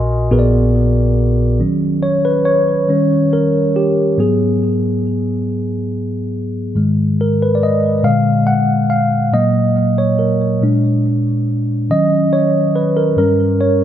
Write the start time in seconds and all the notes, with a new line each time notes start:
Already playing: A#1 A#2 F#4 A#4 D#5 G#5 C6
0.31 A#1 A#2 B3 F#4 G#4 A#4 B4
0.39 D5
1.59 D#3 F#3 C#4
2.03 C#5
2.25 B4
2.45 C#5
2.89 D#3 G3 C#4
3.33 A#4
3.76 G4
4.18 G#2 F#3 B3 G#4
6.75 G#2 D#3 G#3
7.21 A#4
7.42 B4
7.55 D5
7.63 D#5
8.04 A#2 D3 G#3 F5
8.47 F#5
8.90 F5
9.32 A#2 F#3 A#3 D#5
9.98 C#5
10.19 A#4
10.62 A#2 G#3 D4
11.90 D#3 F#3 C#4 D#5
12.33 C#5
12.76 B4
12.97 A#4
13.17 G2 G3 C#4 A#4
13.61 C#5